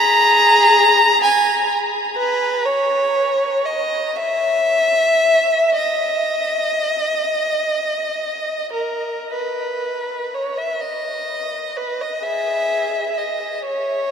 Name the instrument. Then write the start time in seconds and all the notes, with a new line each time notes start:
violin
Already playing: G#4 A#5
1.24 G#5
2.17 B4
2.66 C#5
3.65 D#5
4.16 E5
5.76 D#5
8.74 A#4
9.35 B4
10.34 C#5
10.58 E5
10.82 D#5
11.77 B4
12.01 D#5
12.23 G#4 E5
13.18 D#5
13.66 C#5